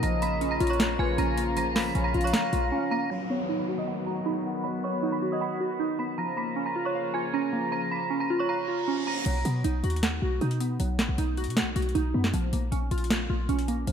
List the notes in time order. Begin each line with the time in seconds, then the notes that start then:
0.03 A#1 C#3 F3 A#3 F4 D#5 A#5 A#6, closed hi-hat
0.22 A#3 B5 B6, closed hi-hat
0.41 C#4, closed hi-hat
0.51 A#5 A#6
0.60 A#1 F4 C#5, closed hi-hat
0.67 C#5 C#6, closed hi-hat
0.73 closed hi-hat
0.80 F5, snare, closed hi-hat
0.99 A#1 F4 B4 G#5 G#6
1.18 A#1 C#4 A#5 A#6, closed hi-hat
1.37 A#3, closed hi-hat
1.57 F3 A#5 A#6, closed hi-hat
1.76 A#3 B5 B6, snare, open hi-hat
1.95 A#1 C#4 C#5, closed hi-hat
2.04 A#5 A#6
2.14 A#1 F4 F5, closed hi-hat
2.21 C#6, closed hi-hat
2.25 C#5, closed hi-hat
2.33 F5 A#5 A#6, snare, closed hi-hat
2.52 A#1 F4, closed hi-hat
2.72 C#4
2.91 A#3 A#5 A#6
3.10 D#3 F#3 B3 F#4 B5, downlifter
3.30 B3 C#5 C#6
3.49 D#4
3.59 B5 B6
3.68 F#4
3.78 D#5 D#6
3.88 F#5
4.06 F#4 A#5 A#6
4.26 D#4 B5 B6
4.45 B3
4.64 F#3 B5 B6
4.84 B3 C#5 C#6
5.03 D#4
5.12 B5 B6
5.22 F#4
5.32 D#5 D#6
5.41 F#5 B5 B6
5.61 F#4
5.80 D#4
5.99 B3 B5 B6
6.18 C#3 F3 A#3 F4 A#5 A#6
6.37 A#3 B5 B6
6.56 C#4
6.66 A#5 A#6
6.76 F4
6.85 C#5 C#6
6.95 F5
7.14 F4 G#5 G#6
7.34 C#4 A#5 A#6
7.53 A#3
7.72 F3 A#5 A#6
7.91 A#3 B5 B6
8.10 C#4
8.20 A#5 A#6
8.30 F4
8.39 C#5 C#6
8.49 F5 A#5 A#6, reverse cymbal
8.68 F4
8.88 C#4
9.06 A#3 A#5 A#6
9.26 B1 F#3, closed hi-hat, crash
9.45 B2 B3, closed hi-hat
9.64 B1 D#4, closed hi-hat
9.84 D#2 F#4, closed hi-hat
9.90 closed hi-hat
9.96 closed hi-hat
10.03 F#5, snare, closed hi-hat
10.22 B1 F#4
10.41 B2 D#4, closed hi-hat
10.51 closed hi-hat
10.60 B3, closed hi-hat
10.80 B1 F#3, closed hi-hat
10.99 A#1 B3, snare, closed hi-hat
11.09 B1
11.18 B1 D#4, closed hi-hat
11.37 F#4, closed hi-hat
11.44 B2, closed hi-hat
11.50 closed hi-hat
11.56 F#5, snare, closed hi-hat
11.61 B1
11.76 B1 F#4, closed hi-hat
11.82 closed hi-hat
11.89 closed hi-hat
11.95 B1 D#4, closed hi-hat
12.14 F#2 B3
12.24 snare
12.34 A#1 F3, closed hi-hat
12.53 A#1 A#3, closed hi-hat
12.72 A#1 C#4, closed hi-hat
12.91 A#1 F4, closed hi-hat
12.98 closed hi-hat
13.04 closed hi-hat
13.10 F5, snare, closed hi-hat
13.30 A#1 F4
13.49 A#1 C#4, closed hi-hat
13.59 closed hi-hat
13.68 A#3, closed hi-hat
13.87 A#1 F3, closed hi-hat